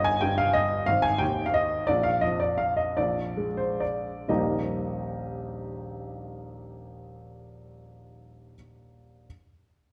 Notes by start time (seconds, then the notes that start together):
Already playing: G1
0.04 G#5
0.21 G2 G5
0.38 F5
0.53 D#5
0.86 G#1 F5
1.02 G#5
1.18 D#2 G5
1.46 F5
1.54 D#5
1.87 A#1 D5
2.03 F5
2.21 F2 D#5
2.40 D5
2.58 F5
2.77 D#5
2.97 A#1 D5
3.37 G#3
3.57 C5
3.80 D5
4.28 D#1 A#1 G3 A#3 D#4 G4 D#5